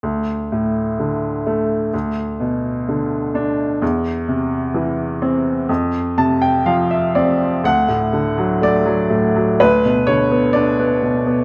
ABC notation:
X:1
M:4/4
L:1/16
Q:1/4=63
K:Bm
V:1 name="Upright piano"
z16 | z8 z2 a g =f e d2 | f4 d4 B2 c2 d4 |]
V:2 name="Upright piano" clef=bass
D,,2 A,,2 D,2 A,2 D,,2 B,,2 D,2 D2 | E,,2 =C,2 E,2 =C2 =F,,2 C,2 =F,2 C2 | D,, A,, D, F, A, F, A,, F, D,, B,, D, B, D B, B,, B, |]